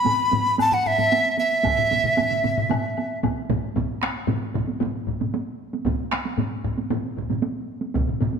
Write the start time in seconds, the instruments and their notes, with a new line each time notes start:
Already playing: dizi B5
0.06 taiko low-mid, taiko high, high woodblock
0.19 taiko high
0.32 taiko low-mid, taiko high
0.45 taiko high
0.58 dizi A5, taiko low-mid, taiko high, high woodblock
0.72 dizi F#5, taiko low-mid
0.86 dizi E5, taiko low-mid, high woodblock
0.98 taiko low-mid, taiko high
1.12 taiko high, high woodblock
1.25 taiko high
1.37 dizi E5, taiko high
1.52 taiko high
1.63 taiko, taiko low-mid, taiko mid, taiko high, high woodblock
1.78 taiko low-mid, taiko mid, taiko high
1.91 taiko low-mid, taiko mid, taiko high
2.04 taiko low-mid, taiko mid, taiko high
2.17 taiko low-mid, taiko mid, taiko high, high woodblock
2.31 taiko low-mid, taiko mid, taiko high
2.44 taiko low-mid, taiko mid, taiko high
2.57 taiko low-mid, taiko mid, taiko high
2.70 taiko low-mid, taiko mid, taiko high, high woodblock
2.84 taiko high
2.97 taiko high, high woodblock
3.23 taiko, taiko low-mid, taiko mid, taiko high, high woodblock
3.50 taiko, taiko low-mid, taiko mid, taiko high
3.65 taiko high
3.76 taiko, taiko low-mid, taiko mid, taiko high
4.02 taiko rim, taiko high
4.27 taiko low-mid, taiko mid, taiko high
4.54 taiko, taiko low-mid, taiko mid
4.67 taiko high
4.80 taiko low-mid, taiko mid, taiko high
5.07 taiko, taiko low-mid, taiko mid
5.20 taiko low-mid, taiko mid, taiko high
5.34 taiko high
5.73 taiko high
5.85 taiko, taiko low-mid, taiko mid, taiko high
6.12 taiko rim, taiko high
6.25 taiko high
6.38 taiko low-mid, taiko mid, taiko high
6.64 taiko, taiko low-mid, taiko mid
6.78 taiko high
6.90 taiko low-mid, taiko mid, taiko high
7.17 taiko, taiko low-mid, taiko mid
7.30 taiko low-mid, taiko mid, taiko high
7.42 taiko high
7.81 taiko high
7.94 taiko, taiko low-mid, taiko mid, taiko high
8.07 taiko low-mid, taiko mid
8.21 taiko low-mid, taiko mid, taiko high
8.33 taiko high